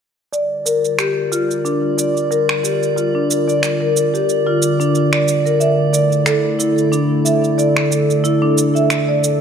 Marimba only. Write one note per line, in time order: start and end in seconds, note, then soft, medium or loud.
0.33 0.50 D5 medium
0.66 0.97 A#4 medium
0.99 1.30 G4 medium
1.32 1.49 F4 medium
1.65 1.96 D4 medium
1.98 2.29 D5 medium
2.31 2.48 A#4 medium
2.64 2.81 G4 medium
2.96 3.13 F4 medium
3.15 3.29 D4 medium
3.48 3.79 D5 medium
3.81 3.95 A#4 medium
4.14 4.28 G4 medium
4.47 4.61 F4 medium
4.80 5.11 D4 medium
5.13 5.27 D5 medium
5.46 5.59 A#4 medium
5.60 5.78 E5 medium
5.93 6.25 D5 medium
6.26 6.58 A4 medium
6.59 6.76 E4 medium
6.92 7.24 D4 medium
7.25 7.57 E5 medium
7.58 7.76 D5 medium
7.91 8.08 A4 medium
8.24 8.40 E4 medium
8.42 8.56 D4 medium
8.75 9.06 E5 medium
9.08 9.22 D5 medium